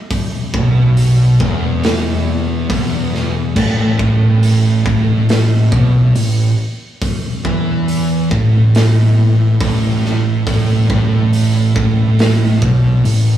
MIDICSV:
0, 0, Header, 1, 4, 480
1, 0, Start_track
1, 0, Tempo, 863309
1, 58, Time_signature, 4, 2, 24, 8
1, 7437, End_track
2, 0, Start_track
2, 0, Title_t, "Distorted electric guitar"
2, 0, Program_c, 0, 30
2, 300, Note_on_c, 0, 47, 111
2, 773, Note_off_c, 0, 47, 0
2, 781, Note_on_c, 0, 40, 109
2, 1494, Note_off_c, 0, 40, 0
2, 1501, Note_on_c, 0, 40, 105
2, 1974, Note_off_c, 0, 40, 0
2, 1979, Note_on_c, 0, 45, 117
2, 2210, Note_off_c, 0, 45, 0
2, 2217, Note_on_c, 0, 45, 105
2, 2692, Note_off_c, 0, 45, 0
2, 2703, Note_on_c, 0, 45, 105
2, 3175, Note_off_c, 0, 45, 0
2, 3180, Note_on_c, 0, 47, 108
2, 3413, Note_off_c, 0, 47, 0
2, 3421, Note_on_c, 0, 45, 70
2, 3613, Note_off_c, 0, 45, 0
2, 4139, Note_on_c, 0, 52, 108
2, 4612, Note_off_c, 0, 52, 0
2, 4621, Note_on_c, 0, 45, 105
2, 5332, Note_off_c, 0, 45, 0
2, 5340, Note_on_c, 0, 45, 106
2, 5811, Note_off_c, 0, 45, 0
2, 5822, Note_on_c, 0, 45, 116
2, 6052, Note_off_c, 0, 45, 0
2, 6060, Note_on_c, 0, 45, 105
2, 6528, Note_off_c, 0, 45, 0
2, 6535, Note_on_c, 0, 45, 107
2, 7007, Note_off_c, 0, 45, 0
2, 7020, Note_on_c, 0, 47, 103
2, 7249, Note_off_c, 0, 47, 0
2, 7256, Note_on_c, 0, 45, 72
2, 7437, Note_off_c, 0, 45, 0
2, 7437, End_track
3, 0, Start_track
3, 0, Title_t, "Fingered electric bass"
3, 0, Program_c, 1, 33
3, 301, Note_on_c, 1, 35, 99
3, 758, Note_off_c, 1, 35, 0
3, 778, Note_on_c, 1, 28, 100
3, 1478, Note_off_c, 1, 28, 0
3, 1501, Note_on_c, 1, 28, 96
3, 1959, Note_off_c, 1, 28, 0
3, 1980, Note_on_c, 1, 33, 95
3, 2204, Note_off_c, 1, 33, 0
3, 2222, Note_on_c, 1, 33, 96
3, 2679, Note_off_c, 1, 33, 0
3, 2701, Note_on_c, 1, 33, 97
3, 3159, Note_off_c, 1, 33, 0
3, 3183, Note_on_c, 1, 35, 98
3, 3405, Note_off_c, 1, 35, 0
3, 3419, Note_on_c, 1, 33, 76
3, 3643, Note_off_c, 1, 33, 0
3, 4141, Note_on_c, 1, 40, 103
3, 4598, Note_off_c, 1, 40, 0
3, 4620, Note_on_c, 1, 33, 95
3, 5317, Note_off_c, 1, 33, 0
3, 5340, Note_on_c, 1, 33, 92
3, 5796, Note_off_c, 1, 33, 0
3, 5819, Note_on_c, 1, 33, 108
3, 6041, Note_off_c, 1, 33, 0
3, 6062, Note_on_c, 1, 33, 105
3, 6516, Note_off_c, 1, 33, 0
3, 6538, Note_on_c, 1, 33, 101
3, 6994, Note_off_c, 1, 33, 0
3, 7017, Note_on_c, 1, 35, 100
3, 7239, Note_off_c, 1, 35, 0
3, 7256, Note_on_c, 1, 33, 82
3, 7437, Note_off_c, 1, 33, 0
3, 7437, End_track
4, 0, Start_track
4, 0, Title_t, "Drums"
4, 58, Note_on_c, 9, 46, 57
4, 59, Note_on_c, 9, 36, 107
4, 114, Note_off_c, 9, 46, 0
4, 115, Note_off_c, 9, 36, 0
4, 299, Note_on_c, 9, 36, 113
4, 355, Note_off_c, 9, 36, 0
4, 539, Note_on_c, 9, 46, 63
4, 594, Note_off_c, 9, 46, 0
4, 779, Note_on_c, 9, 36, 118
4, 834, Note_off_c, 9, 36, 0
4, 1020, Note_on_c, 9, 46, 70
4, 1027, Note_on_c, 9, 38, 115
4, 1076, Note_off_c, 9, 46, 0
4, 1083, Note_off_c, 9, 38, 0
4, 1500, Note_on_c, 9, 36, 115
4, 1502, Note_on_c, 9, 46, 71
4, 1556, Note_off_c, 9, 36, 0
4, 1557, Note_off_c, 9, 46, 0
4, 1749, Note_on_c, 9, 38, 36
4, 1805, Note_off_c, 9, 38, 0
4, 1980, Note_on_c, 9, 36, 109
4, 1982, Note_on_c, 9, 49, 104
4, 2036, Note_off_c, 9, 36, 0
4, 2037, Note_off_c, 9, 49, 0
4, 2220, Note_on_c, 9, 36, 107
4, 2276, Note_off_c, 9, 36, 0
4, 2462, Note_on_c, 9, 46, 69
4, 2517, Note_off_c, 9, 46, 0
4, 2701, Note_on_c, 9, 36, 112
4, 2756, Note_off_c, 9, 36, 0
4, 2941, Note_on_c, 9, 46, 68
4, 2948, Note_on_c, 9, 38, 117
4, 2996, Note_off_c, 9, 46, 0
4, 3004, Note_off_c, 9, 38, 0
4, 3181, Note_on_c, 9, 36, 112
4, 3236, Note_off_c, 9, 36, 0
4, 3422, Note_on_c, 9, 46, 69
4, 3478, Note_off_c, 9, 46, 0
4, 3901, Note_on_c, 9, 36, 111
4, 3901, Note_on_c, 9, 46, 57
4, 3956, Note_off_c, 9, 46, 0
4, 3957, Note_off_c, 9, 36, 0
4, 4141, Note_on_c, 9, 36, 104
4, 4197, Note_off_c, 9, 36, 0
4, 4382, Note_on_c, 9, 46, 60
4, 4438, Note_off_c, 9, 46, 0
4, 4621, Note_on_c, 9, 36, 118
4, 4677, Note_off_c, 9, 36, 0
4, 4863, Note_on_c, 9, 46, 65
4, 4871, Note_on_c, 9, 38, 118
4, 4919, Note_off_c, 9, 46, 0
4, 4926, Note_off_c, 9, 38, 0
4, 5341, Note_on_c, 9, 36, 115
4, 5343, Note_on_c, 9, 46, 70
4, 5396, Note_off_c, 9, 36, 0
4, 5398, Note_off_c, 9, 46, 0
4, 5590, Note_on_c, 9, 38, 39
4, 5646, Note_off_c, 9, 38, 0
4, 5820, Note_on_c, 9, 36, 102
4, 5821, Note_on_c, 9, 46, 63
4, 5876, Note_off_c, 9, 36, 0
4, 5877, Note_off_c, 9, 46, 0
4, 6059, Note_on_c, 9, 36, 111
4, 6115, Note_off_c, 9, 36, 0
4, 6300, Note_on_c, 9, 46, 67
4, 6355, Note_off_c, 9, 46, 0
4, 6538, Note_on_c, 9, 36, 116
4, 6593, Note_off_c, 9, 36, 0
4, 6778, Note_on_c, 9, 46, 71
4, 6785, Note_on_c, 9, 38, 119
4, 6833, Note_off_c, 9, 46, 0
4, 6841, Note_off_c, 9, 38, 0
4, 7017, Note_on_c, 9, 36, 117
4, 7072, Note_off_c, 9, 36, 0
4, 7257, Note_on_c, 9, 46, 65
4, 7312, Note_off_c, 9, 46, 0
4, 7437, End_track
0, 0, End_of_file